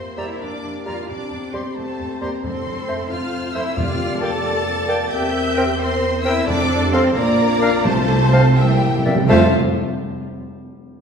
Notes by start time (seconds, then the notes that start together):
Already playing: A#3 C4 G4 C5 C6
0.17 F2 G3 E4 D5 E5 A#5 E6
0.40 F2 D4 A#4 D5 D6
0.64 F2
0.86 F2 G3 F4 D5 F5 A#5 F6
1.08 E2 C4 D4 G4 D5 D6
1.31 E2
1.53 E2 G3 C4 C5 C6
1.76 E2 A3 A4 C5 A5
1.99 E2
2.21 E2 G3 A#3 A#4 C5 A#5 C6
2.43 F2 C4 A4 C5 C6
2.67 F2
2.88 F2 A3 C5 C6
3.10 F2 F4 C5 F5 F6
3.34 F2
3.54 F2 A3 E4 C5 E5 C6 E6
3.77 F2 A#3 F4 G4 D5 F5 F6
4.21 A#3 A4 D5 G5 A5 A6
4.66 A4
4.88 A#3 D5 G5
5.11 E2 C4 G4 A#4 E5 G5 G6
5.56 C4 A#4 G5
5.79 C4 A#4 C5 C6
6.24 C4 E4 A#4 E5 G5 E6
6.46 F2 C4 D4 A4 D5 D6
6.82 G4
6.93 C4 A4 C5 F5 C6
7.15 A#1 A#3 D4 F4 A#4 D5 A#5
7.61 D4 A#4 F5
7.85 C2 C3 A3 C4 F4 A4 C5 A5
8.32 C4 C5 F5
8.57 C3 G3 A#3 E4 G4 E5 G5
8.65 C3
8.73 C3
8.81 C3
8.89 C3
8.98 C3
9.05 C3 A#3 D5 E5
9.15 C3
9.28 F2 F3 A3 F4 C5 F5 A5